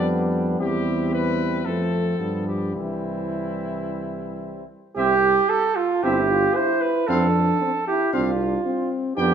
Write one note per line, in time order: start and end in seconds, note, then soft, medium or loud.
0.00 0.56 F2 medium
0.00 1.65 G3 medium
0.00 0.61 B3 medium
0.00 0.56 D4 medium
0.60 1.66 E2 medium
0.60 1.67 C4 medium
0.60 1.67 E4 medium
0.60 1.09 G4 medium
1.13 1.67 B4 loud
1.65 2.19 F2 medium
1.65 2.76 F3 medium
1.65 2.19 A3 medium
1.65 2.20 C4 medium
1.65 2.46 A4 medium
2.19 2.76 G2 medium
2.19 4.64 G3 medium
2.19 2.74 B3 soft
2.47 2.74 G4 medium
2.74 4.68 C2 medium
2.74 4.68 E3 medium
2.74 4.65 C4 medium
2.74 4.65 E4 medium
4.96 5.41 C2 medium
4.96 5.15 C4 medium
4.96 5.51 G4 loud
4.96 5.15 E5 medium
5.50 5.77 A4 loud
5.76 6.05 F4 loud
6.03 6.47 G1 medium
6.03 6.22 C4 medium
6.03 6.32 E4 medium
6.03 6.57 G4 loud
6.03 6.22 E5 medium
6.30 6.58 F4 medium
6.55 7.08 E4 medium
6.55 6.83 C5 loud
6.81 7.09 B4 medium
7.07 7.52 F2 medium
7.07 7.27 C4 medium
7.07 7.60 D4 medium
7.07 7.87 A4 loud
7.07 7.26 F5 medium
7.61 7.73 C4 medium
7.87 8.15 E4 medium
7.87 8.13 G4 loud
8.13 8.57 C2 medium
8.13 8.32 C4 medium
8.13 8.65 D4 medium
8.13 8.90 F4 medium
8.13 8.31 F5 medium
8.65 9.16 C4 medium
9.17 9.34 F2 medium
9.17 9.34 B3 medium
9.17 9.34 D4 medium
9.17 9.34 G4 loud
9.17 9.34 G5 medium